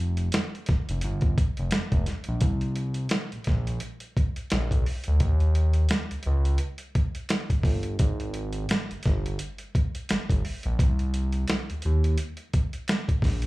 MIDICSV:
0, 0, Header, 1, 3, 480
1, 0, Start_track
1, 0, Tempo, 697674
1, 1665, Time_signature, 4, 2, 24, 8
1, 9265, End_track
2, 0, Start_track
2, 0, Title_t, "Analog synth bass"
2, 0, Program_c, 0, 38
2, 0, Note_on_c, 0, 29, 103
2, 201, Note_off_c, 0, 29, 0
2, 478, Note_on_c, 0, 29, 49
2, 530, Note_off_c, 0, 29, 0
2, 617, Note_on_c, 0, 29, 78
2, 704, Note_off_c, 0, 29, 0
2, 718, Note_on_c, 0, 31, 91
2, 932, Note_off_c, 0, 31, 0
2, 1096, Note_on_c, 0, 29, 78
2, 1183, Note_off_c, 0, 29, 0
2, 1200, Note_on_c, 0, 29, 46
2, 1252, Note_off_c, 0, 29, 0
2, 1325, Note_on_c, 0, 29, 94
2, 1417, Note_off_c, 0, 29, 0
2, 1571, Note_on_c, 0, 34, 83
2, 1661, Note_off_c, 0, 34, 0
2, 1666, Note_on_c, 0, 36, 95
2, 2118, Note_off_c, 0, 36, 0
2, 2292, Note_on_c, 0, 34, 47
2, 2330, Note_off_c, 0, 34, 0
2, 2393, Note_on_c, 0, 34, 87
2, 2610, Note_off_c, 0, 34, 0
2, 3115, Note_on_c, 0, 34, 103
2, 3238, Note_off_c, 0, 34, 0
2, 3245, Note_on_c, 0, 35, 99
2, 3338, Note_off_c, 0, 35, 0
2, 3494, Note_on_c, 0, 38, 81
2, 3581, Note_off_c, 0, 38, 0
2, 3585, Note_on_c, 0, 39, 105
2, 4037, Note_off_c, 0, 39, 0
2, 4205, Note_on_c, 0, 37, 48
2, 4245, Note_off_c, 0, 37, 0
2, 4309, Note_on_c, 0, 37, 96
2, 4528, Note_off_c, 0, 37, 0
2, 5258, Note_on_c, 0, 31, 88
2, 5482, Note_off_c, 0, 31, 0
2, 5504, Note_on_c, 0, 32, 106
2, 5957, Note_off_c, 0, 32, 0
2, 6132, Note_on_c, 0, 31, 46
2, 6170, Note_off_c, 0, 31, 0
2, 6237, Note_on_c, 0, 31, 94
2, 6452, Note_off_c, 0, 31, 0
2, 6956, Note_on_c, 0, 31, 48
2, 7009, Note_off_c, 0, 31, 0
2, 7088, Note_on_c, 0, 31, 91
2, 7179, Note_off_c, 0, 31, 0
2, 7332, Note_on_c, 0, 34, 97
2, 7430, Note_on_c, 0, 36, 115
2, 7440, Note_off_c, 0, 34, 0
2, 7880, Note_off_c, 0, 36, 0
2, 8051, Note_on_c, 0, 39, 50
2, 8090, Note_off_c, 0, 39, 0
2, 8155, Note_on_c, 0, 39, 89
2, 8371, Note_off_c, 0, 39, 0
2, 9102, Note_on_c, 0, 34, 87
2, 9265, Note_off_c, 0, 34, 0
2, 9265, End_track
3, 0, Start_track
3, 0, Title_t, "Drums"
3, 117, Note_on_c, 9, 42, 50
3, 186, Note_off_c, 9, 42, 0
3, 220, Note_on_c, 9, 42, 84
3, 234, Note_on_c, 9, 38, 104
3, 289, Note_off_c, 9, 42, 0
3, 303, Note_off_c, 9, 38, 0
3, 378, Note_on_c, 9, 42, 30
3, 447, Note_off_c, 9, 42, 0
3, 456, Note_on_c, 9, 42, 62
3, 473, Note_on_c, 9, 36, 102
3, 475, Note_on_c, 9, 38, 37
3, 525, Note_off_c, 9, 42, 0
3, 542, Note_off_c, 9, 36, 0
3, 544, Note_off_c, 9, 38, 0
3, 610, Note_on_c, 9, 42, 55
3, 679, Note_off_c, 9, 42, 0
3, 697, Note_on_c, 9, 42, 84
3, 766, Note_off_c, 9, 42, 0
3, 832, Note_on_c, 9, 42, 33
3, 840, Note_on_c, 9, 36, 88
3, 901, Note_off_c, 9, 42, 0
3, 909, Note_off_c, 9, 36, 0
3, 947, Note_on_c, 9, 36, 96
3, 949, Note_on_c, 9, 42, 57
3, 1016, Note_off_c, 9, 36, 0
3, 1018, Note_off_c, 9, 42, 0
3, 1081, Note_on_c, 9, 42, 45
3, 1150, Note_off_c, 9, 42, 0
3, 1175, Note_on_c, 9, 42, 89
3, 1185, Note_on_c, 9, 38, 96
3, 1244, Note_off_c, 9, 42, 0
3, 1254, Note_off_c, 9, 38, 0
3, 1320, Note_on_c, 9, 36, 84
3, 1320, Note_on_c, 9, 42, 34
3, 1388, Note_off_c, 9, 42, 0
3, 1389, Note_off_c, 9, 36, 0
3, 1420, Note_on_c, 9, 42, 57
3, 1428, Note_on_c, 9, 38, 34
3, 1489, Note_off_c, 9, 42, 0
3, 1497, Note_off_c, 9, 38, 0
3, 1540, Note_on_c, 9, 42, 54
3, 1609, Note_off_c, 9, 42, 0
3, 1655, Note_on_c, 9, 42, 78
3, 1662, Note_on_c, 9, 36, 106
3, 1724, Note_off_c, 9, 42, 0
3, 1730, Note_off_c, 9, 36, 0
3, 1796, Note_on_c, 9, 42, 39
3, 1865, Note_off_c, 9, 42, 0
3, 1896, Note_on_c, 9, 42, 64
3, 1965, Note_off_c, 9, 42, 0
3, 2025, Note_on_c, 9, 42, 48
3, 2094, Note_off_c, 9, 42, 0
3, 2127, Note_on_c, 9, 42, 80
3, 2141, Note_on_c, 9, 38, 107
3, 2196, Note_off_c, 9, 42, 0
3, 2210, Note_off_c, 9, 38, 0
3, 2285, Note_on_c, 9, 42, 42
3, 2354, Note_off_c, 9, 42, 0
3, 2369, Note_on_c, 9, 42, 58
3, 2389, Note_on_c, 9, 36, 87
3, 2389, Note_on_c, 9, 38, 34
3, 2438, Note_off_c, 9, 42, 0
3, 2457, Note_off_c, 9, 38, 0
3, 2458, Note_off_c, 9, 36, 0
3, 2526, Note_on_c, 9, 42, 51
3, 2595, Note_off_c, 9, 42, 0
3, 2615, Note_on_c, 9, 42, 83
3, 2684, Note_off_c, 9, 42, 0
3, 2754, Note_on_c, 9, 42, 44
3, 2823, Note_off_c, 9, 42, 0
3, 2866, Note_on_c, 9, 36, 93
3, 2871, Note_on_c, 9, 42, 52
3, 2935, Note_off_c, 9, 36, 0
3, 2940, Note_off_c, 9, 42, 0
3, 3001, Note_on_c, 9, 42, 46
3, 3070, Note_off_c, 9, 42, 0
3, 3098, Note_on_c, 9, 42, 93
3, 3108, Note_on_c, 9, 38, 90
3, 3166, Note_off_c, 9, 42, 0
3, 3176, Note_off_c, 9, 38, 0
3, 3240, Note_on_c, 9, 36, 73
3, 3246, Note_on_c, 9, 42, 47
3, 3309, Note_off_c, 9, 36, 0
3, 3314, Note_off_c, 9, 42, 0
3, 3346, Note_on_c, 9, 46, 44
3, 3415, Note_off_c, 9, 46, 0
3, 3465, Note_on_c, 9, 42, 56
3, 3534, Note_off_c, 9, 42, 0
3, 3578, Note_on_c, 9, 42, 79
3, 3581, Note_on_c, 9, 36, 110
3, 3647, Note_off_c, 9, 42, 0
3, 3650, Note_off_c, 9, 36, 0
3, 3717, Note_on_c, 9, 42, 37
3, 3786, Note_off_c, 9, 42, 0
3, 3819, Note_on_c, 9, 42, 65
3, 3887, Note_off_c, 9, 42, 0
3, 3946, Note_on_c, 9, 42, 49
3, 4015, Note_off_c, 9, 42, 0
3, 4050, Note_on_c, 9, 42, 80
3, 4064, Note_on_c, 9, 38, 105
3, 4119, Note_off_c, 9, 42, 0
3, 4133, Note_off_c, 9, 38, 0
3, 4204, Note_on_c, 9, 42, 43
3, 4272, Note_off_c, 9, 42, 0
3, 4284, Note_on_c, 9, 42, 60
3, 4353, Note_off_c, 9, 42, 0
3, 4438, Note_on_c, 9, 42, 48
3, 4507, Note_off_c, 9, 42, 0
3, 4527, Note_on_c, 9, 42, 85
3, 4596, Note_off_c, 9, 42, 0
3, 4665, Note_on_c, 9, 42, 49
3, 4734, Note_off_c, 9, 42, 0
3, 4782, Note_on_c, 9, 42, 57
3, 4783, Note_on_c, 9, 36, 91
3, 4851, Note_off_c, 9, 42, 0
3, 4852, Note_off_c, 9, 36, 0
3, 4918, Note_on_c, 9, 42, 46
3, 4987, Note_off_c, 9, 42, 0
3, 5015, Note_on_c, 9, 42, 99
3, 5025, Note_on_c, 9, 38, 98
3, 5084, Note_off_c, 9, 42, 0
3, 5094, Note_off_c, 9, 38, 0
3, 5159, Note_on_c, 9, 36, 75
3, 5161, Note_on_c, 9, 42, 50
3, 5227, Note_off_c, 9, 36, 0
3, 5230, Note_off_c, 9, 42, 0
3, 5253, Note_on_c, 9, 36, 94
3, 5262, Note_on_c, 9, 46, 41
3, 5321, Note_off_c, 9, 36, 0
3, 5330, Note_off_c, 9, 46, 0
3, 5387, Note_on_c, 9, 42, 55
3, 5456, Note_off_c, 9, 42, 0
3, 5497, Note_on_c, 9, 42, 81
3, 5501, Note_on_c, 9, 36, 113
3, 5566, Note_off_c, 9, 42, 0
3, 5570, Note_off_c, 9, 36, 0
3, 5641, Note_on_c, 9, 42, 38
3, 5709, Note_off_c, 9, 42, 0
3, 5736, Note_on_c, 9, 42, 63
3, 5805, Note_off_c, 9, 42, 0
3, 5866, Note_on_c, 9, 42, 51
3, 5935, Note_off_c, 9, 42, 0
3, 5978, Note_on_c, 9, 42, 83
3, 5992, Note_on_c, 9, 38, 106
3, 6047, Note_off_c, 9, 42, 0
3, 6061, Note_off_c, 9, 38, 0
3, 6129, Note_on_c, 9, 42, 41
3, 6198, Note_off_c, 9, 42, 0
3, 6211, Note_on_c, 9, 42, 60
3, 6230, Note_on_c, 9, 38, 37
3, 6231, Note_on_c, 9, 36, 94
3, 6280, Note_off_c, 9, 42, 0
3, 6299, Note_off_c, 9, 36, 0
3, 6299, Note_off_c, 9, 38, 0
3, 6370, Note_on_c, 9, 42, 53
3, 6438, Note_off_c, 9, 42, 0
3, 6460, Note_on_c, 9, 42, 81
3, 6529, Note_off_c, 9, 42, 0
3, 6594, Note_on_c, 9, 42, 45
3, 6663, Note_off_c, 9, 42, 0
3, 6707, Note_on_c, 9, 36, 92
3, 6711, Note_on_c, 9, 42, 56
3, 6776, Note_off_c, 9, 36, 0
3, 6780, Note_off_c, 9, 42, 0
3, 6844, Note_on_c, 9, 42, 47
3, 6913, Note_off_c, 9, 42, 0
3, 6943, Note_on_c, 9, 42, 91
3, 6953, Note_on_c, 9, 38, 93
3, 7011, Note_off_c, 9, 42, 0
3, 7021, Note_off_c, 9, 38, 0
3, 7083, Note_on_c, 9, 36, 79
3, 7089, Note_on_c, 9, 42, 50
3, 7152, Note_off_c, 9, 36, 0
3, 7158, Note_off_c, 9, 42, 0
3, 7188, Note_on_c, 9, 46, 43
3, 7257, Note_off_c, 9, 46, 0
3, 7315, Note_on_c, 9, 42, 51
3, 7383, Note_off_c, 9, 42, 0
3, 7425, Note_on_c, 9, 36, 110
3, 7429, Note_on_c, 9, 42, 80
3, 7493, Note_off_c, 9, 36, 0
3, 7498, Note_off_c, 9, 42, 0
3, 7562, Note_on_c, 9, 42, 42
3, 7631, Note_off_c, 9, 42, 0
3, 7663, Note_on_c, 9, 42, 66
3, 7732, Note_off_c, 9, 42, 0
3, 7792, Note_on_c, 9, 42, 46
3, 7860, Note_off_c, 9, 42, 0
3, 7895, Note_on_c, 9, 42, 90
3, 7909, Note_on_c, 9, 38, 101
3, 7964, Note_off_c, 9, 42, 0
3, 7978, Note_off_c, 9, 38, 0
3, 8048, Note_on_c, 9, 42, 42
3, 8116, Note_off_c, 9, 42, 0
3, 8132, Note_on_c, 9, 42, 58
3, 8201, Note_off_c, 9, 42, 0
3, 8285, Note_on_c, 9, 42, 54
3, 8353, Note_off_c, 9, 42, 0
3, 8377, Note_on_c, 9, 42, 82
3, 8446, Note_off_c, 9, 42, 0
3, 8510, Note_on_c, 9, 42, 45
3, 8579, Note_off_c, 9, 42, 0
3, 8624, Note_on_c, 9, 42, 56
3, 8626, Note_on_c, 9, 36, 91
3, 8693, Note_off_c, 9, 42, 0
3, 8694, Note_off_c, 9, 36, 0
3, 8759, Note_on_c, 9, 42, 46
3, 8828, Note_off_c, 9, 42, 0
3, 8860, Note_on_c, 9, 42, 88
3, 8870, Note_on_c, 9, 38, 98
3, 8929, Note_off_c, 9, 42, 0
3, 8939, Note_off_c, 9, 38, 0
3, 9003, Note_on_c, 9, 36, 74
3, 9005, Note_on_c, 9, 42, 47
3, 9072, Note_off_c, 9, 36, 0
3, 9074, Note_off_c, 9, 42, 0
3, 9097, Note_on_c, 9, 36, 85
3, 9109, Note_on_c, 9, 46, 42
3, 9117, Note_on_c, 9, 38, 33
3, 9166, Note_off_c, 9, 36, 0
3, 9178, Note_off_c, 9, 46, 0
3, 9186, Note_off_c, 9, 38, 0
3, 9233, Note_on_c, 9, 42, 53
3, 9265, Note_off_c, 9, 42, 0
3, 9265, End_track
0, 0, End_of_file